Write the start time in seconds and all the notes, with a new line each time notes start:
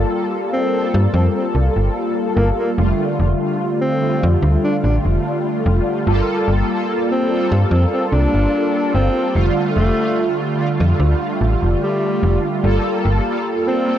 Already playing: G3 A#3 F4 A4
0.11 G3 A#3 F4 A4
0.53 C4
0.70 G3 A#3 F4 A4
0.94 G2
1.13 F2 C4
1.35 C4
1.55 C2
1.76 G1
2.36 G1 A#3
2.58 A#3
2.77 F1 D3 G3 A3 F4
3.19 F1
3.40 D3 G3 A3 F4
3.81 C4
4.00 D3 G3 A3 F4
4.23 F2
4.42 D2
4.64 D4
4.83 A1 D4
5.05 F1
5.66 F1
6.06 G1 G3 A#3 F4 A4
6.48 G1
6.69 G3 A#3 F4 A4
7.11 C4
7.29 G3 A#3 F4 A4
7.52 G2
7.71 F2 C4
7.93 C4
8.12 C2 D4
8.34 G1
8.94 G1 C4
9.34 F1 D3 G3 A3 F4
9.76 F1 A3
9.97 D3 G3 A3 F4
10.57 D3 G3 A3 F4
10.80 F2
11.00 D2
11.41 A1
11.63 F1
11.81 G3
12.23 F1
12.63 G1 G3 A#3 F4 A4
13.05 G1
13.26 G3 A#3 F4 A4
13.67 C4
13.85 G3 A#3 F4 A4